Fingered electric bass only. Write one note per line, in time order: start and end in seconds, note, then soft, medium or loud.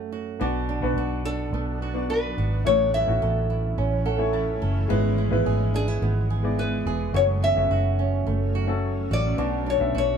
0.41 0.80 B1 loud
0.83 0.96 B1 medium
0.96 1.49 B1 loud
1.53 2.33 B1 loud
2.38 2.63 G#1 medium
2.66 3.04 A1 loud
3.08 3.20 A1 medium
3.22 3.74 A1 medium
3.77 4.58 A1 loud
4.62 4.88 F#1 medium
4.90 5.29 G#1 loud
5.32 5.45 G#1 loud
5.46 5.98 G#1 loud
6.02 6.82 G#1 loud
6.86 7.12 E1 medium
7.14 7.53 F#1 loud
7.56 7.69 F#1 medium
7.70 8.22 F#1 loud
8.26 9.06 F#1 loud
9.11 9.36 A1 medium
9.38 9.77 B1 loud
9.81 9.94 B1 medium
9.95 10.18 B1 loud